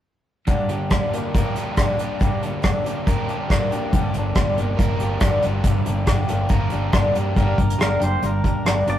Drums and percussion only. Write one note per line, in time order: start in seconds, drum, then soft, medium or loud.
0.47 kick medium
0.47 closed hi-hat medium
0.69 closed hi-hat medium
0.90 kick medium
0.90 cross-stick medium
0.90 closed hi-hat medium
1.13 closed hi-hat medium
1.35 kick medium
1.35 closed hi-hat medium
1.56 closed hi-hat medium
1.77 kick loud
1.77 cross-stick loud
1.77 closed hi-hat medium
1.99 closed hi-hat medium
2.21 kick medium
2.21 closed hi-hat medium
2.43 closed hi-hat medium
2.63 kick medium
2.63 cross-stick medium
2.63 closed hi-hat medium
2.86 closed hi-hat medium
3.07 kick medium
3.07 closed hi-hat medium
3.29 closed hi-hat soft
3.50 kick loud
3.50 cross-stick loud
3.50 closed hi-hat medium
3.72 closed hi-hat soft
3.93 kick medium
3.93 closed hi-hat medium
4.14 closed hi-hat medium
4.35 kick medium
4.35 cross-stick medium
4.35 closed hi-hat medium
4.58 closed hi-hat medium
4.79 kick medium
4.79 closed hi-hat medium
5.00 closed hi-hat medium
5.20 kick loud
5.20 cross-stick loud
5.20 closed hi-hat medium
5.42 closed hi-hat medium
5.64 kick medium
5.64 closed hi-hat medium
5.86 closed hi-hat medium
6.07 kick medium
6.07 cross-stick medium
6.07 closed hi-hat medium
6.28 closed hi-hat medium
6.49 kick medium
6.49 closed hi-hat medium
6.70 closed hi-hat soft
6.93 kick medium
6.93 cross-stick loud
6.93 closed hi-hat medium
7.15 closed hi-hat soft
7.36 kick medium
7.36 closed hi-hat soft
7.58 kick medium
7.58 closed hi-hat medium
7.70 closed hi-hat medium
7.80 cross-stick medium
7.80 closed hi-hat medium
8.01 closed hi-hat medium
8.22 closed hi-hat medium
8.44 kick medium
8.44 closed hi-hat medium
8.66 cross-stick loud
8.66 closed hi-hat medium
8.87 closed hi-hat medium